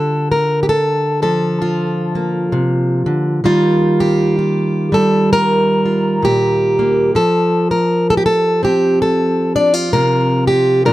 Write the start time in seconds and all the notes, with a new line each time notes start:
Already playing: D3 F4 A4
0.32 A#4
0.63 G4
0.69 A4
1.22 F3 A4
1.62 F4
2.15 A#3
2.52 C3
3.06 D3
3.44 D#3 G3 A#3 F4
4.00 G4
4.39 F4
4.92 G3 A4
5.33 A#4
5.85 F4
6.22 A#2 G4
6.79 A#3
7.15 F3 A4
7.71 A#4
8.10 A4
8.17 G4
8.26 A4
8.63 C4 G4
9.02 A4
9.56 D4 D5
9.74 F4
9.93 C3 A#4
10.47 F4 G4
10.85 A#2 F3 D4 F4 A#4